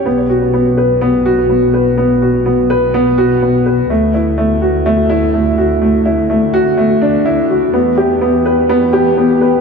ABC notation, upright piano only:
X:1
M:4/4
L:1/8
Q:1/4=125
K:D
V:1 name="Upright piano"
B, F B, B B, F B, B | B, F B, B B, F B, B | A, E A, F A, E A, F | A, E A, F A, D E F |
B, G B, B B, G B, B |]